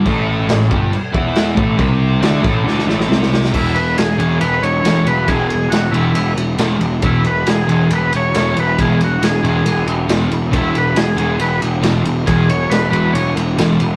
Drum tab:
CC |x---x---x---x---|x---x-----------|x---------------|----------------|
RD |----------------|----------------|--x-x-x-x-x-x-x-|x-x-x-x-x-x-x-x-|
SD |----o-------o---|----o-o-oooooooo|----o-------o---|----o-------o---|
BD |o-----o---o---o-|o-----o---------|o---------------|o---------------|

CC |----------------|----------------|----------------|----------------|
RD |x-x-x-x-x-x-x-x-|x-x-x-x-x-x-x-x-|x-x-x-x-x-x-x-x-|x-x-x-x-x-x-x-x-|
SD |----o-------o---|----o-------o---|----o-------o---|----o-------o---|
BD |o---------------|o---------------|o---------------|o---------------|